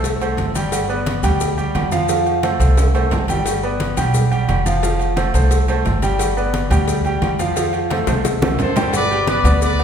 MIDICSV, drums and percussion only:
0, 0, Header, 1, 2, 480
1, 0, Start_track
1, 0, Key_signature, 1, "major"
1, 0, Tempo, 342270
1, 1014, Time_signature, 4, 2, 24, 8
1, 13798, End_track
2, 0, Start_track
2, 0, Title_t, "Drums"
2, 56, Note_on_c, 9, 56, 108
2, 63, Note_on_c, 9, 63, 36
2, 65, Note_on_c, 9, 68, 76
2, 65, Note_on_c, 9, 70, 85
2, 196, Note_off_c, 9, 56, 0
2, 203, Note_off_c, 9, 63, 0
2, 205, Note_off_c, 9, 68, 0
2, 205, Note_off_c, 9, 70, 0
2, 301, Note_on_c, 9, 68, 109
2, 303, Note_on_c, 9, 70, 30
2, 308, Note_on_c, 9, 63, 39
2, 441, Note_off_c, 9, 68, 0
2, 443, Note_off_c, 9, 70, 0
2, 448, Note_off_c, 9, 63, 0
2, 531, Note_on_c, 9, 70, 29
2, 535, Note_on_c, 9, 56, 69
2, 540, Note_on_c, 9, 63, 88
2, 671, Note_off_c, 9, 70, 0
2, 675, Note_off_c, 9, 56, 0
2, 681, Note_off_c, 9, 63, 0
2, 774, Note_on_c, 9, 70, 80
2, 776, Note_on_c, 9, 56, 67
2, 778, Note_on_c, 9, 63, 84
2, 784, Note_on_c, 9, 68, 75
2, 914, Note_off_c, 9, 70, 0
2, 917, Note_off_c, 9, 56, 0
2, 919, Note_off_c, 9, 63, 0
2, 924, Note_off_c, 9, 68, 0
2, 1012, Note_on_c, 9, 56, 111
2, 1017, Note_on_c, 9, 70, 94
2, 1021, Note_on_c, 9, 68, 116
2, 1022, Note_on_c, 9, 63, 37
2, 1152, Note_off_c, 9, 56, 0
2, 1158, Note_off_c, 9, 70, 0
2, 1161, Note_off_c, 9, 68, 0
2, 1162, Note_off_c, 9, 63, 0
2, 1253, Note_on_c, 9, 70, 31
2, 1264, Note_on_c, 9, 63, 36
2, 1394, Note_off_c, 9, 70, 0
2, 1404, Note_off_c, 9, 63, 0
2, 1492, Note_on_c, 9, 56, 81
2, 1496, Note_on_c, 9, 68, 76
2, 1498, Note_on_c, 9, 70, 34
2, 1499, Note_on_c, 9, 63, 94
2, 1632, Note_off_c, 9, 56, 0
2, 1637, Note_off_c, 9, 68, 0
2, 1638, Note_off_c, 9, 70, 0
2, 1639, Note_off_c, 9, 63, 0
2, 1728, Note_on_c, 9, 70, 76
2, 1738, Note_on_c, 9, 56, 71
2, 1740, Note_on_c, 9, 68, 100
2, 1742, Note_on_c, 9, 63, 36
2, 1742, Note_on_c, 9, 64, 81
2, 1869, Note_off_c, 9, 70, 0
2, 1878, Note_off_c, 9, 56, 0
2, 1880, Note_off_c, 9, 68, 0
2, 1883, Note_off_c, 9, 63, 0
2, 1883, Note_off_c, 9, 64, 0
2, 1969, Note_on_c, 9, 70, 91
2, 1978, Note_on_c, 9, 56, 99
2, 1979, Note_on_c, 9, 63, 36
2, 2109, Note_off_c, 9, 70, 0
2, 2118, Note_off_c, 9, 56, 0
2, 2120, Note_off_c, 9, 63, 0
2, 2213, Note_on_c, 9, 68, 86
2, 2217, Note_on_c, 9, 70, 31
2, 2219, Note_on_c, 9, 63, 41
2, 2354, Note_off_c, 9, 68, 0
2, 2357, Note_off_c, 9, 70, 0
2, 2360, Note_off_c, 9, 63, 0
2, 2452, Note_on_c, 9, 66, 84
2, 2452, Note_on_c, 9, 68, 116
2, 2456, Note_on_c, 9, 63, 89
2, 2456, Note_on_c, 9, 70, 31
2, 2462, Note_on_c, 9, 56, 68
2, 2592, Note_off_c, 9, 66, 0
2, 2592, Note_off_c, 9, 68, 0
2, 2596, Note_off_c, 9, 63, 0
2, 2596, Note_off_c, 9, 70, 0
2, 2602, Note_off_c, 9, 56, 0
2, 2687, Note_on_c, 9, 70, 78
2, 2697, Note_on_c, 9, 56, 69
2, 2698, Note_on_c, 9, 63, 89
2, 2828, Note_off_c, 9, 70, 0
2, 2837, Note_off_c, 9, 56, 0
2, 2838, Note_off_c, 9, 63, 0
2, 2927, Note_on_c, 9, 70, 94
2, 2935, Note_on_c, 9, 68, 89
2, 2936, Note_on_c, 9, 56, 116
2, 2944, Note_on_c, 9, 63, 35
2, 3067, Note_off_c, 9, 70, 0
2, 3075, Note_off_c, 9, 68, 0
2, 3076, Note_off_c, 9, 56, 0
2, 3084, Note_off_c, 9, 63, 0
2, 3173, Note_on_c, 9, 68, 94
2, 3174, Note_on_c, 9, 63, 35
2, 3174, Note_on_c, 9, 70, 29
2, 3314, Note_off_c, 9, 63, 0
2, 3314, Note_off_c, 9, 68, 0
2, 3315, Note_off_c, 9, 70, 0
2, 3409, Note_on_c, 9, 68, 110
2, 3411, Note_on_c, 9, 63, 90
2, 3412, Note_on_c, 9, 56, 72
2, 3421, Note_on_c, 9, 70, 32
2, 3549, Note_off_c, 9, 68, 0
2, 3551, Note_off_c, 9, 63, 0
2, 3552, Note_off_c, 9, 56, 0
2, 3562, Note_off_c, 9, 70, 0
2, 3651, Note_on_c, 9, 56, 74
2, 3655, Note_on_c, 9, 63, 36
2, 3657, Note_on_c, 9, 70, 74
2, 3792, Note_off_c, 9, 56, 0
2, 3796, Note_off_c, 9, 63, 0
2, 3798, Note_off_c, 9, 70, 0
2, 3890, Note_on_c, 9, 56, 101
2, 3895, Note_on_c, 9, 65, 97
2, 3895, Note_on_c, 9, 68, 84
2, 3896, Note_on_c, 9, 70, 86
2, 4031, Note_off_c, 9, 56, 0
2, 4036, Note_off_c, 9, 65, 0
2, 4036, Note_off_c, 9, 68, 0
2, 4036, Note_off_c, 9, 70, 0
2, 4133, Note_on_c, 9, 65, 66
2, 4133, Note_on_c, 9, 68, 109
2, 4140, Note_on_c, 9, 63, 35
2, 4145, Note_on_c, 9, 70, 33
2, 4273, Note_off_c, 9, 65, 0
2, 4273, Note_off_c, 9, 68, 0
2, 4281, Note_off_c, 9, 63, 0
2, 4285, Note_off_c, 9, 70, 0
2, 4365, Note_on_c, 9, 56, 67
2, 4376, Note_on_c, 9, 66, 90
2, 4383, Note_on_c, 9, 63, 84
2, 4383, Note_on_c, 9, 70, 28
2, 4505, Note_off_c, 9, 56, 0
2, 4517, Note_off_c, 9, 66, 0
2, 4523, Note_off_c, 9, 70, 0
2, 4524, Note_off_c, 9, 63, 0
2, 4603, Note_on_c, 9, 56, 64
2, 4613, Note_on_c, 9, 66, 76
2, 4613, Note_on_c, 9, 68, 75
2, 4622, Note_on_c, 9, 70, 76
2, 4623, Note_on_c, 9, 63, 84
2, 4744, Note_off_c, 9, 56, 0
2, 4754, Note_off_c, 9, 66, 0
2, 4754, Note_off_c, 9, 68, 0
2, 4762, Note_off_c, 9, 70, 0
2, 4764, Note_off_c, 9, 63, 0
2, 4847, Note_on_c, 9, 56, 110
2, 4850, Note_on_c, 9, 68, 107
2, 4858, Note_on_c, 9, 70, 98
2, 4861, Note_on_c, 9, 63, 37
2, 4987, Note_off_c, 9, 56, 0
2, 4990, Note_off_c, 9, 68, 0
2, 4998, Note_off_c, 9, 70, 0
2, 5001, Note_off_c, 9, 63, 0
2, 5092, Note_on_c, 9, 70, 30
2, 5102, Note_on_c, 9, 63, 37
2, 5232, Note_off_c, 9, 70, 0
2, 5242, Note_off_c, 9, 63, 0
2, 5328, Note_on_c, 9, 56, 84
2, 5329, Note_on_c, 9, 68, 78
2, 5329, Note_on_c, 9, 70, 29
2, 5332, Note_on_c, 9, 63, 94
2, 5469, Note_off_c, 9, 56, 0
2, 5469, Note_off_c, 9, 68, 0
2, 5470, Note_off_c, 9, 70, 0
2, 5473, Note_off_c, 9, 63, 0
2, 5570, Note_on_c, 9, 68, 106
2, 5571, Note_on_c, 9, 56, 81
2, 5571, Note_on_c, 9, 70, 82
2, 5580, Note_on_c, 9, 63, 38
2, 5580, Note_on_c, 9, 64, 81
2, 5710, Note_off_c, 9, 68, 0
2, 5711, Note_off_c, 9, 56, 0
2, 5711, Note_off_c, 9, 70, 0
2, 5720, Note_off_c, 9, 63, 0
2, 5720, Note_off_c, 9, 64, 0
2, 5808, Note_on_c, 9, 70, 83
2, 5813, Note_on_c, 9, 56, 98
2, 5815, Note_on_c, 9, 63, 37
2, 5815, Note_on_c, 9, 64, 77
2, 5948, Note_off_c, 9, 70, 0
2, 5953, Note_off_c, 9, 56, 0
2, 5955, Note_off_c, 9, 63, 0
2, 5955, Note_off_c, 9, 64, 0
2, 6052, Note_on_c, 9, 68, 86
2, 6055, Note_on_c, 9, 63, 38
2, 6057, Note_on_c, 9, 70, 30
2, 6192, Note_off_c, 9, 68, 0
2, 6196, Note_off_c, 9, 63, 0
2, 6197, Note_off_c, 9, 70, 0
2, 6292, Note_on_c, 9, 66, 84
2, 6292, Note_on_c, 9, 68, 114
2, 6295, Note_on_c, 9, 56, 64
2, 6297, Note_on_c, 9, 63, 81
2, 6302, Note_on_c, 9, 70, 26
2, 6432, Note_off_c, 9, 66, 0
2, 6432, Note_off_c, 9, 68, 0
2, 6435, Note_off_c, 9, 56, 0
2, 6438, Note_off_c, 9, 63, 0
2, 6442, Note_off_c, 9, 70, 0
2, 6536, Note_on_c, 9, 56, 69
2, 6536, Note_on_c, 9, 63, 78
2, 6539, Note_on_c, 9, 70, 82
2, 6677, Note_off_c, 9, 56, 0
2, 6677, Note_off_c, 9, 63, 0
2, 6679, Note_off_c, 9, 70, 0
2, 6771, Note_on_c, 9, 68, 86
2, 6774, Note_on_c, 9, 63, 38
2, 6775, Note_on_c, 9, 56, 111
2, 6785, Note_on_c, 9, 70, 96
2, 6911, Note_off_c, 9, 68, 0
2, 6915, Note_off_c, 9, 56, 0
2, 6915, Note_off_c, 9, 63, 0
2, 6925, Note_off_c, 9, 70, 0
2, 7005, Note_on_c, 9, 68, 88
2, 7021, Note_on_c, 9, 63, 35
2, 7028, Note_on_c, 9, 70, 32
2, 7146, Note_off_c, 9, 68, 0
2, 7161, Note_off_c, 9, 63, 0
2, 7168, Note_off_c, 9, 70, 0
2, 7244, Note_on_c, 9, 68, 111
2, 7249, Note_on_c, 9, 63, 92
2, 7252, Note_on_c, 9, 56, 81
2, 7261, Note_on_c, 9, 70, 29
2, 7384, Note_off_c, 9, 68, 0
2, 7389, Note_off_c, 9, 63, 0
2, 7392, Note_off_c, 9, 56, 0
2, 7401, Note_off_c, 9, 70, 0
2, 7491, Note_on_c, 9, 56, 74
2, 7499, Note_on_c, 9, 63, 35
2, 7501, Note_on_c, 9, 70, 74
2, 7631, Note_off_c, 9, 56, 0
2, 7639, Note_off_c, 9, 63, 0
2, 7641, Note_off_c, 9, 70, 0
2, 7724, Note_on_c, 9, 68, 73
2, 7725, Note_on_c, 9, 56, 107
2, 7729, Note_on_c, 9, 70, 89
2, 7734, Note_on_c, 9, 63, 37
2, 7864, Note_off_c, 9, 68, 0
2, 7866, Note_off_c, 9, 56, 0
2, 7870, Note_off_c, 9, 70, 0
2, 7874, Note_off_c, 9, 63, 0
2, 7968, Note_on_c, 9, 63, 37
2, 7970, Note_on_c, 9, 68, 111
2, 7976, Note_on_c, 9, 70, 30
2, 8108, Note_off_c, 9, 63, 0
2, 8110, Note_off_c, 9, 68, 0
2, 8116, Note_off_c, 9, 70, 0
2, 8212, Note_on_c, 9, 56, 68
2, 8213, Note_on_c, 9, 63, 86
2, 8213, Note_on_c, 9, 66, 74
2, 8219, Note_on_c, 9, 70, 28
2, 8352, Note_off_c, 9, 56, 0
2, 8353, Note_off_c, 9, 66, 0
2, 8354, Note_off_c, 9, 63, 0
2, 8359, Note_off_c, 9, 70, 0
2, 8446, Note_on_c, 9, 68, 71
2, 8448, Note_on_c, 9, 63, 85
2, 8450, Note_on_c, 9, 56, 67
2, 8456, Note_on_c, 9, 70, 72
2, 8586, Note_off_c, 9, 68, 0
2, 8588, Note_off_c, 9, 63, 0
2, 8590, Note_off_c, 9, 56, 0
2, 8596, Note_off_c, 9, 70, 0
2, 8685, Note_on_c, 9, 68, 120
2, 8688, Note_on_c, 9, 56, 120
2, 8695, Note_on_c, 9, 63, 39
2, 8700, Note_on_c, 9, 70, 91
2, 8825, Note_off_c, 9, 68, 0
2, 8828, Note_off_c, 9, 56, 0
2, 8835, Note_off_c, 9, 63, 0
2, 8840, Note_off_c, 9, 70, 0
2, 8929, Note_on_c, 9, 63, 35
2, 8940, Note_on_c, 9, 70, 30
2, 9069, Note_off_c, 9, 63, 0
2, 9080, Note_off_c, 9, 70, 0
2, 9168, Note_on_c, 9, 56, 72
2, 9168, Note_on_c, 9, 63, 99
2, 9170, Note_on_c, 9, 68, 73
2, 9185, Note_on_c, 9, 70, 29
2, 9308, Note_off_c, 9, 56, 0
2, 9309, Note_off_c, 9, 63, 0
2, 9310, Note_off_c, 9, 68, 0
2, 9325, Note_off_c, 9, 70, 0
2, 9406, Note_on_c, 9, 68, 112
2, 9409, Note_on_c, 9, 56, 69
2, 9414, Note_on_c, 9, 63, 39
2, 9414, Note_on_c, 9, 64, 93
2, 9425, Note_on_c, 9, 70, 71
2, 9547, Note_off_c, 9, 68, 0
2, 9549, Note_off_c, 9, 56, 0
2, 9554, Note_off_c, 9, 63, 0
2, 9554, Note_off_c, 9, 64, 0
2, 9565, Note_off_c, 9, 70, 0
2, 9643, Note_on_c, 9, 56, 105
2, 9653, Note_on_c, 9, 63, 37
2, 9657, Note_on_c, 9, 70, 85
2, 9783, Note_off_c, 9, 56, 0
2, 9793, Note_off_c, 9, 63, 0
2, 9797, Note_off_c, 9, 70, 0
2, 9882, Note_on_c, 9, 68, 88
2, 9890, Note_on_c, 9, 63, 35
2, 9898, Note_on_c, 9, 70, 29
2, 10022, Note_off_c, 9, 68, 0
2, 10030, Note_off_c, 9, 63, 0
2, 10038, Note_off_c, 9, 70, 0
2, 10123, Note_on_c, 9, 56, 73
2, 10123, Note_on_c, 9, 66, 75
2, 10123, Note_on_c, 9, 68, 103
2, 10128, Note_on_c, 9, 63, 83
2, 10137, Note_on_c, 9, 70, 29
2, 10263, Note_off_c, 9, 66, 0
2, 10263, Note_off_c, 9, 68, 0
2, 10264, Note_off_c, 9, 56, 0
2, 10268, Note_off_c, 9, 63, 0
2, 10277, Note_off_c, 9, 70, 0
2, 10369, Note_on_c, 9, 56, 73
2, 10370, Note_on_c, 9, 70, 79
2, 10371, Note_on_c, 9, 63, 88
2, 10509, Note_off_c, 9, 56, 0
2, 10510, Note_off_c, 9, 70, 0
2, 10511, Note_off_c, 9, 63, 0
2, 10601, Note_on_c, 9, 68, 91
2, 10609, Note_on_c, 9, 63, 38
2, 10611, Note_on_c, 9, 70, 93
2, 10613, Note_on_c, 9, 56, 110
2, 10741, Note_off_c, 9, 68, 0
2, 10749, Note_off_c, 9, 63, 0
2, 10751, Note_off_c, 9, 70, 0
2, 10754, Note_off_c, 9, 56, 0
2, 10839, Note_on_c, 9, 68, 89
2, 10850, Note_on_c, 9, 70, 33
2, 10856, Note_on_c, 9, 63, 33
2, 10979, Note_off_c, 9, 68, 0
2, 10990, Note_off_c, 9, 70, 0
2, 10996, Note_off_c, 9, 63, 0
2, 11084, Note_on_c, 9, 68, 112
2, 11087, Note_on_c, 9, 56, 82
2, 11090, Note_on_c, 9, 70, 32
2, 11097, Note_on_c, 9, 63, 97
2, 11225, Note_off_c, 9, 68, 0
2, 11227, Note_off_c, 9, 56, 0
2, 11230, Note_off_c, 9, 70, 0
2, 11237, Note_off_c, 9, 63, 0
2, 11320, Note_on_c, 9, 56, 76
2, 11320, Note_on_c, 9, 60, 112
2, 11326, Note_on_c, 9, 70, 73
2, 11331, Note_on_c, 9, 63, 36
2, 11460, Note_off_c, 9, 56, 0
2, 11460, Note_off_c, 9, 60, 0
2, 11466, Note_off_c, 9, 70, 0
2, 11471, Note_off_c, 9, 63, 0
2, 11562, Note_on_c, 9, 68, 76
2, 11566, Note_on_c, 9, 63, 74
2, 11569, Note_on_c, 9, 56, 101
2, 11569, Note_on_c, 9, 60, 89
2, 11570, Note_on_c, 9, 70, 87
2, 11702, Note_off_c, 9, 68, 0
2, 11706, Note_off_c, 9, 63, 0
2, 11709, Note_off_c, 9, 56, 0
2, 11709, Note_off_c, 9, 60, 0
2, 11710, Note_off_c, 9, 70, 0
2, 11808, Note_on_c, 9, 65, 89
2, 11808, Note_on_c, 9, 68, 110
2, 11808, Note_on_c, 9, 70, 29
2, 11812, Note_on_c, 9, 63, 123
2, 11948, Note_off_c, 9, 65, 0
2, 11948, Note_off_c, 9, 68, 0
2, 11948, Note_off_c, 9, 70, 0
2, 11953, Note_off_c, 9, 63, 0
2, 12043, Note_on_c, 9, 65, 100
2, 12055, Note_on_c, 9, 70, 28
2, 12056, Note_on_c, 9, 56, 66
2, 12057, Note_on_c, 9, 64, 94
2, 12184, Note_off_c, 9, 65, 0
2, 12196, Note_off_c, 9, 56, 0
2, 12196, Note_off_c, 9, 70, 0
2, 12197, Note_off_c, 9, 64, 0
2, 12283, Note_on_c, 9, 66, 100
2, 12283, Note_on_c, 9, 68, 75
2, 12292, Note_on_c, 9, 56, 67
2, 12292, Note_on_c, 9, 61, 86
2, 12292, Note_on_c, 9, 70, 73
2, 12295, Note_on_c, 9, 64, 112
2, 12423, Note_off_c, 9, 66, 0
2, 12423, Note_off_c, 9, 68, 0
2, 12432, Note_off_c, 9, 56, 0
2, 12432, Note_off_c, 9, 61, 0
2, 12433, Note_off_c, 9, 70, 0
2, 12436, Note_off_c, 9, 64, 0
2, 12523, Note_on_c, 9, 68, 112
2, 12529, Note_on_c, 9, 63, 41
2, 12530, Note_on_c, 9, 56, 112
2, 12534, Note_on_c, 9, 70, 93
2, 12663, Note_off_c, 9, 68, 0
2, 12669, Note_off_c, 9, 63, 0
2, 12671, Note_off_c, 9, 56, 0
2, 12674, Note_off_c, 9, 70, 0
2, 12773, Note_on_c, 9, 63, 36
2, 12786, Note_on_c, 9, 70, 34
2, 12914, Note_off_c, 9, 63, 0
2, 12926, Note_off_c, 9, 70, 0
2, 13006, Note_on_c, 9, 63, 107
2, 13008, Note_on_c, 9, 68, 75
2, 13013, Note_on_c, 9, 56, 87
2, 13015, Note_on_c, 9, 70, 33
2, 13147, Note_off_c, 9, 63, 0
2, 13148, Note_off_c, 9, 68, 0
2, 13153, Note_off_c, 9, 56, 0
2, 13155, Note_off_c, 9, 70, 0
2, 13246, Note_on_c, 9, 68, 109
2, 13253, Note_on_c, 9, 56, 71
2, 13258, Note_on_c, 9, 70, 71
2, 13259, Note_on_c, 9, 63, 42
2, 13259, Note_on_c, 9, 64, 100
2, 13386, Note_off_c, 9, 68, 0
2, 13393, Note_off_c, 9, 56, 0
2, 13398, Note_off_c, 9, 70, 0
2, 13400, Note_off_c, 9, 63, 0
2, 13400, Note_off_c, 9, 64, 0
2, 13487, Note_on_c, 9, 70, 94
2, 13491, Note_on_c, 9, 56, 98
2, 13499, Note_on_c, 9, 63, 37
2, 13627, Note_off_c, 9, 70, 0
2, 13632, Note_off_c, 9, 56, 0
2, 13639, Note_off_c, 9, 63, 0
2, 13731, Note_on_c, 9, 70, 31
2, 13732, Note_on_c, 9, 68, 85
2, 13736, Note_on_c, 9, 63, 40
2, 13798, Note_off_c, 9, 63, 0
2, 13798, Note_off_c, 9, 68, 0
2, 13798, Note_off_c, 9, 70, 0
2, 13798, End_track
0, 0, End_of_file